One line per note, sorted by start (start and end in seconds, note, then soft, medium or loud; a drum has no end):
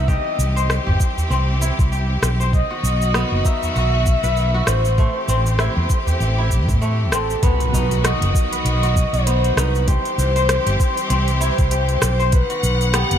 0.00 0.17 C2 medium
0.00 0.62 B3 medium
0.00 1.40 D#4 medium
0.00 0.14 F#4 medium
0.08 2.51 E3 medium
0.08 2.50 G3 medium
0.08 2.51 C4 medium
0.08 0.86 G4 medium
0.08 2.51 G4 medium
0.08 0.66 D#5 medium
0.08 kick loud
0.08 cabasa soft
0.39 0.78 C2 medium
0.39 cabasa medium
0.56 1.75 C5 medium
0.56 cabasa soft
0.70 cross-stick medium
0.70 cabasa soft
0.87 0.96 G1 medium
0.87 1.92 G4 medium
0.87 udu medium
1.00 kick loud
1.00 cabasa medium
1.17 udu medium
1.17 cabasa soft
1.30 1.70 C2 medium
1.30 3.11 C4 medium
1.30 cabasa soft
1.61 3.18 E4 medium
1.61 cabasa medium
1.79 2.16 C2 medium
1.79 kick loud
1.79 cabasa soft
1.92 2.77 G4 medium
1.92 cabasa soft
2.22 2.62 B1 medium
2.22 cross-stick medium
2.22 cabasa medium
2.40 3.20 C5 medium
2.40 cabasa soft
2.53 4.96 B2 medium
2.53 4.96 D#3 medium
2.53 4.96 F#3 medium
2.53 4.96 F#4 medium
2.53 3.47 D#5 loud
2.53 kick loud
2.53 cabasa soft
2.71 3.75 F#4 medium
2.83 3.23 B1 medium
2.83 cabasa medium
3.02 cabasa soft
3.14 5.01 B3 medium
3.14 cross-stick medium
3.14 cabasa soft
3.32 3.41 F#1 medium
3.45 5.07 D#4 medium
3.45 4.69 E5 loud
3.45 kick loud
3.45 cabasa medium
3.63 udu medium
3.63 cabasa soft
3.76 4.15 B1 medium
3.76 4.54 F#4 medium
3.76 cabasa soft
4.06 kick medium
4.06 cabasa medium
4.23 4.61 B1 medium
4.23 5.35 B4 medium
4.23 cabasa soft
4.37 cabasa soft
4.54 6.01 F#4 medium
4.67 5.06 A1 medium
4.67 6.82 C5 loud
4.67 cross-stick medium
4.67 cabasa medium
4.85 cabasa soft
4.98 7.41 E3 medium
4.98 6.81 A3 medium
4.98 7.41 A3 medium
4.98 7.41 C4 medium
4.98 7.41 G4 medium
4.98 kick loud
4.98 cabasa soft
5.28 5.68 A1 loud
5.28 7.09 C4 medium
5.28 cabasa medium
5.46 cabasa soft
5.59 6.38 E4 medium
5.59 cross-stick medium
5.59 cabasa soft
5.77 5.86 E2 medium
5.77 udu medium
5.90 kick loud
5.90 cabasa medium
6.07 7.49 G4 medium
6.07 udu medium
6.07 cabasa soft
6.20 6.69 A1 medium
6.20 cabasa soft
6.38 7.80 E4 medium
6.51 kick medium
6.51 cabasa medium
6.68 7.12 A2 medium
6.68 kick loud
6.68 udu medium
6.68 cabasa soft
6.82 8.81 A3 medium
6.82 cabasa soft
7.12 7.34 A1 loud
7.12 7.49 C4 medium
7.12 7.44 A4 medium
7.12 cross-stick medium
7.12 cabasa medium
7.30 cabasa soft
7.42 9.85 B2 medium
7.42 9.85 D#3 medium
7.42 9.85 F#3 medium
7.42 9.26 B3 medium
7.42 9.85 F#4 medium
7.42 8.03 B4 loud
7.42 kick loud
7.42 closed hi-hat medium
7.42 impact medium
7.42 cabasa soft
7.60 closed hi-hat soft
7.60 cabasa soft
7.73 8.13 B1 medium
7.73 9.36 D#4 medium
7.73 cabasa medium
7.91 closed hi-hat soft
7.91 cabasa soft
8.04 8.83 F#4 medium
8.04 8.61 D#5 medium
8.04 cross-stick medium
8.04 closed hi-hat medium
8.04 cabasa soft
8.21 8.30 F#1 medium
8.21 closed hi-hat soft
8.21 cabasa soft
8.35 kick loud
8.35 cabasa medium
8.52 9.75 B4 medium
8.52 closed hi-hat soft
8.52 cabasa soft
8.65 9.04 B1 medium
8.65 9.15 D#5 loud
8.65 closed hi-hat medium
8.65 cabasa soft
8.83 9.94 F#4 medium
8.83 closed hi-hat soft
8.83 cabasa soft
8.96 kick loud
8.96 cabasa medium
9.13 9.50 B1 medium
9.13 9.59 C5 medium
9.13 closed hi-hat soft
9.13 cabasa soft
9.27 10.42 B3 medium
9.27 closed hi-hat medium
9.27 cabasa soft
9.44 closed hi-hat soft
9.44 cabasa soft
9.57 9.96 C2 medium
9.57 11.19 D#4 medium
9.57 9.89 B4 medium
9.57 cross-stick medium
9.57 cabasa medium
9.75 cabasa soft
9.87 12.30 E3 medium
9.87 12.30 G3 medium
9.87 12.30 C4 medium
9.87 12.30 G4 medium
9.87 10.66 G4 medium
9.87 10.18 C5 loud
9.87 kick loud
9.87 closed hi-hat medium
9.87 cabasa soft
10.05 closed hi-hat soft
10.05 cabasa soft
10.18 10.57 C2 medium
10.18 11.98 C5 loud
10.18 cabasa medium
10.36 11.55 C5 medium
10.36 closed hi-hat soft
10.36 cabasa soft
10.49 cross-stick medium
10.49 closed hi-hat medium
10.49 cabasa soft
10.66 10.75 G1 medium
10.66 11.71 G4 medium
10.66 closed hi-hat soft
10.66 cabasa soft
10.80 kick loud
10.80 cabasa medium
10.97 closed hi-hat soft
10.97 cabasa soft
11.10 11.49 C2 medium
11.10 12.90 C4 medium
11.10 closed hi-hat medium
11.10 cabasa soft
11.28 closed hi-hat soft
11.28 cabasa soft
11.41 12.97 E4 medium
11.41 cabasa medium
11.58 11.96 C2 medium
11.58 kick loud
11.58 closed hi-hat soft
11.58 cabasa soft
11.71 12.56 G4 medium
11.71 closed hi-hat medium
11.71 cabasa soft
11.89 closed hi-hat soft
11.89 cabasa soft
12.02 12.41 B1 medium
12.02 12.35 C5 loud
12.02 cross-stick medium
12.02 cabasa medium
12.19 13.00 C5 medium
12.19 cabasa soft
12.32 13.18 D#3 medium
12.32 13.18 B3 medium
12.32 12.95 B4 loud
12.32 13.18 F#5 loud
12.32 kick loud
12.32 closed hi-hat medium
12.32 cabasa soft
12.50 13.18 F#4 medium
12.50 closed hi-hat soft
12.50 cabasa soft
12.63 13.02 B1 loud
12.63 cabasa medium
12.81 closed hi-hat soft
12.81 cabasa soft
12.94 13.18 B3 medium
12.94 13.18 G4 medium
12.94 cross-stick medium
12.94 closed hi-hat medium
12.94 cabasa soft
13.11 13.18 F#1 loud
13.11 closed hi-hat soft
13.11 cabasa soft